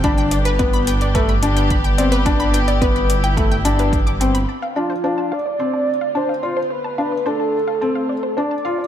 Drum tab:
HH |xxxxxxxxxxxxxxxx|xxxxxxxxxxxxxxxx|----------------|----------------|
BD |o---o---o---o---|o---o---o---o---|----------------|----------------|